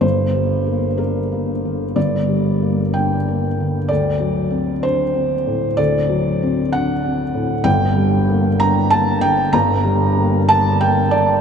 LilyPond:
<<
  \new Staff \with { instrumentName = "Felt piano" } { \time 6/8 \key g \dorian \tempo 4. = 63 c''4. bes'4. | d''4. g''4. | d''4. c''4. | d''4. fis''4. |
g''4. bes''8 a''8 g''8 | bes''4. a''8 g''8 d''8 | }
  \new Staff \with { instrumentName = "Felt piano" } { \clef bass \time 6/8 \key g \dorian <g,, g,>8 g8 bes8 d'8 bes8 d8 | <g,, g,>8 g8 bes8 d'8 bes8 d8 | d,8 fis8 c'8 d'8 c'8 a,8 | d,8 fis8 c'8 d'8 c'8 a,8 |
<g,, g,>8 g8 bes8 d'8 bes8 d8 | <g,, g,>8 g8 bes8 d'8 bes8 d8 | }
>>